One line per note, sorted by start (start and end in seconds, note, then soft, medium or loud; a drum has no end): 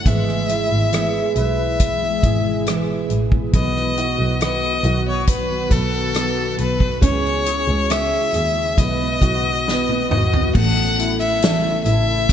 0.00 3.49 E3 medium
0.05 0.67 G#1 medium
0.05 0.49 G#2 medium
0.05 3.50 B2 medium
0.05 0.49 E3 medium
0.05 0.47 G#3 medium
0.05 3.49 G#3 medium
0.05 3.50 G#3 medium
0.05 0.48 B3 medium
0.05 3.50 E4 medium
0.05 0.49 E4 medium
0.05 0.50 G#4 medium
0.05 1.37 E5 medium
0.05 kick medium
0.05 closed hi-hat medium
0.29 cross-stick soft
0.49 0.71 G#3 soft
0.49 0.71 B3 medium
0.49 2.20 E4 soft
0.49 0.70 E4 soft
0.49 0.69 G#4 medium
0.49 closed hi-hat medium
0.70 1.12 G#1 medium
0.70 0.92 G#3 soft
0.70 0.92 B3 soft
0.70 0.92 E4 soft
0.70 0.92 G#4 soft
0.92 1.36 G#2 medium
0.92 1.36 E3 medium
0.92 1.34 G#3 medium
0.92 1.35 B3 medium
0.92 1.36 E4 medium
0.92 1.36 G#4 medium
0.92 2.23 G#4 soft
0.92 cross-stick medium
0.92 closed hi-hat medium
1.35 2.19 B1 medium
1.35 1.58 G#3 medium
1.35 1.58 B3 soft
1.35 1.57 E4 medium
1.35 1.56 G#4 medium
1.35 3.06 B4 soft
1.35 3.06 E5 medium
1.35 closed hi-hat medium
1.57 2.02 G#3 soft
1.57 2.01 B3 soft
1.57 2.01 E4 soft
1.57 2.00 G#4 soft
1.80 kick medium
1.80 closed hi-hat medium
2.01 2.65 G#3 soft
2.01 2.66 B3 soft
2.01 2.66 E4 soft
2.01 2.66 G#4 soft
2.23 3.06 G#1 medium
2.23 3.50 G#4 soft
2.23 kick medium
2.23 closed hi-hat medium
2.66 3.10 G#2 medium
2.66 3.10 E3 medium
2.66 3.08 G#3 medium
2.66 3.09 B3 medium
2.66 3.10 E4 medium
2.66 3.10 G#4 medium
2.66 cross-stick medium
2.66 closed hi-hat medium
3.09 3.51 A1 medium
3.09 3.31 G#3 soft
3.09 3.32 B3 medium
3.09 3.31 E4 medium
3.09 3.30 G#4 medium
3.09 closed hi-hat medium
3.31 3.54 G#3 soft
3.31 3.54 B3 soft
3.31 3.54 E4 soft
3.31 3.53 G#4 soft
3.31 kick medium
3.53 4.15 B1 medium
3.53 3.97 B2 medium
3.53 6.98 D#3 medium
3.53 3.97 D#3 medium
3.53 6.98 F#3 medium
3.53 3.96 F#3 medium
3.53 6.98 B3 medium
3.53 4.39 B3 medium
3.53 3.97 B3 medium
3.53 3.97 D#4 medium
3.53 6.98 F#4 medium
3.53 3.98 B4 medium
3.53 4.38 D#5 medium
3.53 kick medium
3.53 closed hi-hat medium
3.77 cross-stick soft
3.97 4.19 F#3 medium
3.97 4.19 B3 soft
3.97 4.19 D#4 medium
3.97 4.83 F#4 soft
3.97 4.18 B4 medium
3.97 closed hi-hat medium
4.19 4.80 B1 medium
4.19 4.40 F#3 soft
4.19 4.40 B3 soft
4.19 4.41 D#4 soft
4.19 4.41 B4 soft
4.41 4.84 B2 medium
4.41 4.84 D#3 medium
4.41 4.83 F#3 medium
4.41 5.70 B3 soft
4.41 4.84 B3 medium
4.41 4.85 D#4 medium
4.41 4.85 B4 medium
4.41 5.03 D#5 medium
4.41 cross-stick medium
4.41 closed hi-hat medium
4.84 5.67 B1 medium
4.84 5.06 F#3 medium
4.84 5.06 B3 soft
4.84 5.06 D#4 medium
4.84 6.55 F#4 medium
4.84 5.05 B4 medium
4.84 closed hi-hat medium
5.06 5.50 F#3 soft
5.06 5.50 B3 soft
5.06 5.49 D#4 soft
5.06 5.48 B4 soft
5.06 5.27 C#5 medium
5.27 5.74 B4 medium
5.27 kick medium
5.27 closed hi-hat medium
5.49 6.14 F#3 soft
5.49 6.14 B3 soft
5.49 6.15 D#4 soft
5.49 6.15 B4 soft
5.71 6.54 B1 medium
5.71 6.98 B3 soft
5.71 6.59 A4 medium
5.71 kick medium
5.71 closed hi-hat medium
6.14 6.58 B2 medium
6.14 6.59 D#3 medium
6.14 6.57 F#3 medium
6.14 6.58 B3 medium
6.14 6.59 D#4 medium
6.14 6.59 B4 medium
6.14 cross-stick medium
6.14 closed hi-hat medium
6.58 7.01 B1 medium
6.58 6.80 F#3 medium
6.58 6.81 B3 medium
6.58 6.80 D#4 medium
6.58 7.00 B4 medium
6.58 6.79 B4 medium
6.58 closed hi-hat medium
6.80 7.02 F#3 soft
6.80 7.03 B3 soft
6.80 7.02 D#4 soft
6.80 7.02 B4 soft
6.80 kick medium
7.01 7.64 C#2 medium
7.01 8.75 C#3 medium
7.01 7.46 C#3 medium
7.01 8.75 G#3 medium
7.01 7.45 G#3 medium
7.01 7.88 C#4 medium
7.01 7.45 C#4 medium
7.01 8.75 E4 medium
7.01 7.46 E4 medium
7.01 7.46 G#4 medium
7.01 7.92 C#5 loud
7.01 kick medium
7.01 closed hi-hat medium
7.25 cross-stick soft
7.46 7.68 G#3 medium
7.46 7.68 C#4 medium
7.46 7.68 E4 medium
7.46 8.32 G#4 soft
7.46 closed hi-hat medium
7.68 8.09 C#2 medium
7.68 7.89 C#4 soft
7.68 7.89 E4 soft
7.68 7.90 G#4 soft
7.89 8.33 C#3 medium
7.89 8.32 G#3 medium
7.89 8.75 C#4 medium
7.89 8.33 C#4 medium
7.89 8.34 E4 medium
7.89 8.34 G#4 medium
7.89 8.81 E5 medium
7.89 cross-stick medium
7.89 closed hi-hat medium
8.33 8.74 D#2 medium
8.33 8.55 G#3 soft
8.33 8.56 C#4 medium
8.33 8.56 E4 medium
8.33 8.76 G#4 medium
8.33 8.55 G#4 medium
8.33 closed hi-hat medium
8.56 8.78 C#4 soft
8.56 8.78 E4 soft
8.56 8.77 G#4 soft
8.77 9.18 B1 medium
8.77 8.99 B2 medium
8.77 10.53 D#3 medium
8.77 9.00 D#3 medium
8.77 10.53 F#3 medium
8.77 9.00 F#3 medium
8.77 10.53 B3 medium
8.77 9.65 B3 medium
8.77 9.00 B3 medium
8.77 9.00 D#4 medium
8.77 10.53 F#4 medium
8.77 8.99 B4 medium
8.77 10.11 D#5 medium
8.77 kick medium
8.77 closed hi-hat medium
9.00 9.66 F#3 soft
9.00 9.67 B3 soft
9.00 9.67 D#4 soft
9.00 9.66 B4 soft
9.21 10.07 B1 medium
9.21 10.09 F#4 soft
9.21 kick medium
9.21 closed hi-hat medium
9.66 10.11 B2 medium
9.66 10.11 D#3 medium
9.66 10.09 F#3 medium
9.66 10.52 B3 medium
9.66 10.10 B3 medium
9.66 10.10 D#4 medium
9.66 10.11 B4 medium
9.66 snare soft
9.89 high tom soft
10.10 10.52 G#1 medium
10.10 10.32 F#3 medium
10.10 10.33 B3 medium
10.10 10.32 D#4 medium
10.10 10.53 F#4 soft
10.10 10.31 B4 medium
10.10 10.52 D#5 medium
10.10 mid tom medium
10.32 10.55 F#3 soft
10.32 10.55 B3 soft
10.32 10.55 D#4 medium
10.32 10.54 B4 medium
10.32 floor tom medium
10.53 11.82 A1 loud
10.53 11.20 A2 medium
10.53 12.33 C#3 medium
10.53 12.33 E3 medium
10.53 11.20 E3 medium
10.53 12.33 A3 medium
10.53 12.29 A3 medium
10.53 11.20 A3 medium
10.53 11.21 C#4 medium
10.53 12.33 E4 medium
10.53 11.20 E4 medium
10.53 11.19 A4 medium
10.53 11.17 F#5 loud
10.53 kick loud
10.53 crash loud
10.99 11.84 E4 medium
10.99 closed hi-hat medium
11.20 11.41 A3 soft
11.20 11.42 C#4 soft
11.20 11.42 E4 medium
11.20 11.42 A4 medium
11.20 11.81 E5 medium
11.42 11.86 A2 medium
11.42 11.86 E3 medium
11.42 11.84 A3 medium
11.42 11.85 C#4 medium
11.42 11.86 E4 medium
11.42 12.33 A4 medium
11.42 11.86 A4 medium
11.42 snare loud
11.42 closed hi-hat medium
11.84 12.33 A1 loud
11.84 12.07 A3 medium
11.84 12.08 C#4 medium
11.84 12.33 E4 medium
11.84 12.07 E4 medium
11.84 12.06 A4 medium
11.84 12.33 E5 medium
11.84 closed hi-hat medium
12.08 12.33 A3 soft
12.08 12.33 C#4 soft
12.08 12.33 E4 medium
12.08 12.33 A4 soft
12.29 kick medium
12.29 closed hi-hat loud